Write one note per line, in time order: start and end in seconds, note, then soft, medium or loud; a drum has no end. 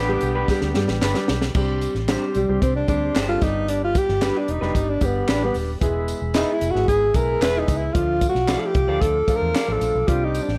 0.00 0.16 A1 medium
0.00 1.25 D3 medium
0.00 1.25 B3 medium
0.00 1.25 G4 loud
0.00 1.53 G4 medium
0.00 1.53 D5 medium
0.00 1.53 B5 medium
0.08 0.35 G3 medium
0.08 0.36 B3 medium
0.08 0.36 D4 medium
0.08 0.36 G4 medium
0.21 0.43 B1 loud
0.21 closed hi-hat medium
0.21 tambourine soft
0.35 0.47 D4 medium
0.35 0.46 G4 medium
0.35 0.46 B4 medium
0.48 0.67 G3 medium
0.48 0.67 B3 medium
0.48 0.67 D4 medium
0.48 0.67 G4 medium
0.48 kick medium
0.48 snare medium
0.48 tambourine soft
0.61 0.72 D2 medium
0.61 snare medium
0.74 0.86 G2 medium
0.74 1.03 G3 medium
0.74 1.03 B3 medium
0.74 1.03 D4 medium
0.74 1.03 G4 loud
0.74 snare medium
0.74 tambourine medium
0.88 0.99 A1 medium
0.88 snare medium
1.02 1.12 G1 medium
1.02 1.16 D4 medium
1.02 1.16 G4 loud
1.02 1.16 B4 medium
1.02 snare medium
1.02 clap medium
1.02 tambourine medium
1.14 1.43 G3 medium
1.14 1.43 B3 medium
1.14 1.43 D4 medium
1.14 1.43 G4 medium
1.14 snare medium
1.28 1.49 B1 medium
1.28 snare medium
1.28 tambourine soft
1.42 snare medium
1.54 1.86 C2 loud
1.54 1.92 G3 medium
1.54 1.92 C4 medium
1.54 1.92 D4 medium
1.54 1.92 G4 medium
1.54 5.78 G4 medium
1.54 5.78 D5 medium
1.54 3.41 C6 medium
1.54 kick loud
1.54 crash medium
1.54 tambourine soft
1.81 closed hi-hat medium
1.81 tambourine medium
1.95 2.15 A1 medium
1.95 snare soft
2.08 2.36 G3 medium
2.08 2.36 C4 medium
2.08 2.23 D4 medium
2.08 2.36 D4 medium
2.08 2.23 G4 medium
2.08 2.37 G4 medium
2.08 2.23 C5 medium
2.08 snare loud
2.08 clap medium
2.08 closed hi-hat medium
2.08 tambourine medium
2.35 2.46 B1 medium
2.35 2.60 G3 medium
2.35 closed hi-hat medium
2.35 tambourine soft
2.49 2.59 C2 medium
2.49 2.76 G3 medium
2.49 2.76 C4 medium
2.49 2.76 D4 medium
2.49 2.76 G4 medium
2.62 2.83 C2 medium
2.62 2.74 C4 medium
2.62 kick medium
2.62 closed hi-hat medium
2.62 tambourine soft
2.75 2.88 D4 medium
2.88 3.09 D2 medium
2.88 3.15 G3 medium
2.88 3.16 C4 medium
2.88 3.16 D4 medium
2.88 3.26 D4 medium
2.88 3.16 G4 medium
2.88 kick medium
2.88 closed hi-hat medium
2.88 tambourine medium
3.15 3.36 G1 medium
3.15 3.29 D4 medium
3.15 3.29 G4 medium
3.15 3.30 C5 medium
3.15 snare loud
3.15 clap medium
3.15 closed hi-hat medium
3.15 tambourine medium
3.28 3.40 G3 medium
3.28 3.42 C4 medium
3.28 3.41 D4 medium
3.28 3.44 F4 medium
3.28 3.42 A4 medium
3.41 3.93 G1 loud
3.41 4.05 G3 medium
3.41 4.06 B3 medium
3.41 4.06 D4 medium
3.41 3.71 D#4 medium
3.41 4.06 G4 medium
3.41 7.91 B5 medium
3.41 kick loud
3.41 snare soft
3.41 closed hi-hat medium
3.41 tambourine soft
3.68 3.82 D4 medium
3.68 closed hi-hat loud
3.68 tambourine soft
3.84 3.99 F4 loud
3.95 4.39 G4 loud
3.95 kick medium
3.95 closed hi-hat medium
3.95 tambourine medium
4.09 4.29 G1 loud
4.09 snare soft
4.21 4.49 G3 medium
4.21 4.49 B3 medium
4.21 4.36 D4 medium
4.21 4.49 D4 medium
4.21 4.36 G4 medium
4.21 4.49 G4 medium
4.21 4.36 B4 medium
4.21 snare loud
4.21 clap medium
4.21 closed hi-hat medium
4.21 tambourine medium
4.38 4.52 D4 medium
4.48 4.59 E1 medium
4.48 4.91 D#4 medium
4.48 closed hi-hat medium
4.61 4.72 F1 medium
4.61 4.89 G3 medium
4.61 4.89 B3 medium
4.61 4.73 D4 soft
4.61 4.89 D4 medium
4.61 4.73 G4 medium
4.61 4.89 G4 medium
4.61 4.72 B4 medium
4.61 snare soft
4.75 4.95 G1 medium
4.75 kick medium
4.75 closed hi-hat medium
4.75 tambourine soft
4.90 5.06 D4 medium
5.01 5.22 G1 medium
5.01 5.28 G3 medium
5.01 5.29 B3 medium
5.01 5.32 B3 medium
5.01 5.29 D4 medium
5.01 5.29 G4 medium
5.01 kick medium
5.01 closed hi-hat medium
5.01 tambourine medium
5.28 5.49 A1 medium
5.28 5.42 D4 medium
5.28 5.43 D4 medium
5.28 5.42 G4 medium
5.28 5.43 B4 medium
5.28 snare loud
5.28 clap medium
5.28 closed hi-hat medium
5.28 tambourine medium
5.42 5.69 G3 medium
5.42 5.69 B3 medium
5.42 5.56 B3 medium
5.42 5.69 D4 medium
5.42 5.69 G4 medium
5.54 5.75 D#1 medium
5.54 open hi-hat medium
5.54 tambourine soft
5.81 6.12 E1 loud
5.81 6.18 G#3 medium
5.81 6.18 B3 medium
5.81 6.18 E4 medium
5.81 6.18 G#4 loud
5.81 7.93 G#4 medium
5.81 7.93 E5 medium
5.81 kick loud
5.81 closed hi-hat loud
5.81 tambourine soft
6.08 closed hi-hat medium
6.08 tambourine medium
6.22 6.42 E1 medium
6.34 6.62 G#3 medium
6.34 6.62 B3 medium
6.34 6.55 D#4 medium
6.34 6.62 E4 medium
6.34 6.49 G#4 medium
6.34 6.62 G#4 medium
6.34 6.49 B4 medium
6.34 6.49 E5 medium
6.34 snare loud
6.34 clap medium
6.34 closed hi-hat medium
6.34 tambourine medium
6.53 6.72 E4 medium
6.61 6.72 F1 medium
6.61 closed hi-hat medium
6.61 tambourine soft
6.71 7.02 G#3 medium
6.71 7.02 B3 medium
6.71 6.88 F#4 medium
6.75 6.85 G#1 medium
6.75 7.02 E4 medium
6.75 7.02 G#4 medium
6.75 snare soft
6.88 7.09 G#1 medium
6.88 7.17 G#4 loud
6.88 kick medium
6.88 closed hi-hat medium
6.88 tambourine soft
7.14 7.35 B1 medium
7.14 7.42 G#3 medium
7.14 7.42 B3 medium
7.14 7.42 E4 medium
7.14 7.42 G#4 medium
7.14 7.43 A#4 loud
7.14 kick medium
7.14 closed hi-hat medium
7.14 tambourine medium
7.41 7.62 E1 medium
7.41 7.56 G#4 medium
7.41 7.60 B4 loud
7.41 7.56 B4 medium
7.41 7.56 E5 medium
7.41 snare loud
7.41 clap medium
7.41 closed hi-hat medium
7.41 tambourine medium
7.54 7.82 G#3 medium
7.54 7.82 B3 medium
7.54 7.82 E4 medium
7.54 7.82 G#4 medium
7.59 7.78 D#4 loud
7.68 7.89 C#2 medium
7.68 kick medium
7.68 closed hi-hat medium
7.68 tambourine medium
7.76 7.95 E4 medium
7.94 8.26 D2 medium
7.94 8.31 F3 medium
7.94 8.31 A3 medium
7.94 8.31 D4 medium
7.94 8.29 F4 medium
7.94 8.31 F4 medium
7.94 10.07 F4 medium
7.94 10.06 F5 medium
7.94 10.58 D6 medium
7.94 kick loud
7.94 closed hi-hat loud
7.94 tambourine soft
8.21 kick medium
8.21 closed hi-hat medium
8.21 tambourine medium
8.29 8.61 F#4 medium
8.35 8.55 B1 medium
8.35 snare soft
8.47 8.75 F3 medium
8.47 8.75 A3 medium
8.47 8.75 D4 medium
8.47 8.76 E4 medium
8.47 8.62 F4 medium
8.47 8.62 A4 medium
8.47 8.63 D5 medium
8.47 snare loud
8.47 clap medium
8.47 closed hi-hat medium
8.47 tambourine medium
8.59 8.67 A4 medium
8.66 9.03 G4 medium
8.75 8.85 C2 medium
8.75 kick medium
8.75 closed hi-hat medium
8.88 8.98 D2 medium
8.88 9.15 F3 medium
8.88 9.16 A3 medium
8.88 9.16 D4 medium
8.88 9.16 F4 medium
8.88 9.00 F4 medium
8.88 8.99 A4 medium
8.88 8.99 D5 medium
9.01 9.22 D2 medium
9.01 9.37 A4 medium
9.01 kick medium
9.01 closed hi-hat medium
9.01 tambourine soft
9.28 9.55 F3 medium
9.28 9.56 A3 medium
9.28 9.56 D4 medium
9.28 9.56 F4 medium
9.28 muted fingered electric bass stroke soft
9.28 kick medium
9.28 closed hi-hat medium
9.28 tambourine medium
9.36 9.73 A#4 loud
9.42 9.52 E2 medium
9.54 9.69 F4 medium
9.54 9.69 A4 medium
9.54 9.69 D5 medium
9.54 snare loud
9.54 clap medium
9.54 closed hi-hat medium
9.54 tambourine medium
9.67 9.79 A1 medium
9.67 9.95 F3 medium
9.67 9.95 A3 medium
9.67 9.95 D4 medium
9.67 9.95 F4 medium
9.72 10.09 A4 medium
9.81 9.92 A#1 medium
9.81 closed hi-hat medium
9.81 tambourine soft
9.95 10.05 B1 medium
10.07 10.39 C2 medium
10.07 10.44 G3 medium
10.07 10.44 C4 medium
10.07 10.44 D4 medium
10.07 10.26 F4 medium
10.07 10.45 G4 medium
10.07 10.58 C5 medium
10.07 10.58 G5 medium
10.07 kick loud
10.07 closed hi-hat loud
10.24 10.44 D#4 medium
10.35 closed hi-hat medium
10.35 tambourine medium
10.42 10.56 D4 medium
10.48 10.58 A1 medium
10.48 snare soft